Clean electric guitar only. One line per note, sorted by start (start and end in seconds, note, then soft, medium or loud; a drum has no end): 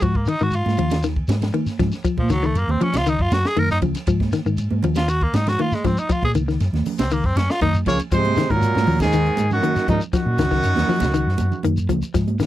0.02 0.16 F3 medium
0.28 0.35 D#3 medium
0.41 0.54 D#3 medium
0.79 0.92 F3 medium
1.04 1.17 D#3 medium
1.54 1.67 D#3 medium
1.79 1.93 F3 medium
2.05 2.18 F3 medium
2.30 2.37 D#3 medium
2.43 2.56 D#3 medium
2.81 2.94 F3 medium
3.07 3.20 D#3 medium
3.57 3.70 D#3 medium
3.83 3.96 F3 medium
4.08 4.21 F3 medium
4.33 4.40 D#3 medium
4.46 4.59 D#3 medium
4.84 4.97 F3 medium
5.08 muted clean electric guitar stroke medium
5.60 5.73 D#3 medium
5.85 5.98 F3 medium
6.09 6.23 F3 medium
6.35 6.42 D#3 medium
6.48 6.61 D#3 medium
7.12 7.25 D#3 medium
7.62 7.75 D#3 medium
7.87 8.00 F3 medium
8.12 8.25 F3 medium
8.38 8.44 D#3 medium
8.51 8.64 D#3 medium
8.88 9.01 F3 medium
9.14 9.27 D#3 medium
9.63 9.76 D#3 medium
9.89 10.02 F3 medium
10.13 10.27 F3 medium
10.39 10.46 D#3 medium
10.51 10.65 D#3 medium
10.89 11.02 F3 medium
11.14 11.27 D#3 medium
11.64 11.78 D#3 medium
11.89 12.03 F3 medium
12.14 12.28 F3 medium
12.40 12.46 D#3 medium